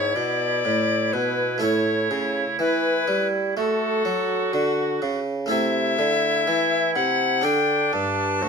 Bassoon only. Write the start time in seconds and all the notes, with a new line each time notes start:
Already playing: G#2
0.16 B2
0.65 A2
1.14 B2
1.63 A2
2.11 C#3
2.60 E3
3.08 G3
3.57 A3
4.05 F#3
4.54 D3
5.02 C#3
5.51 C3
5.99 D3
6.47 E3
6.96 C3
7.45 D3
7.93 G2
8.42 D2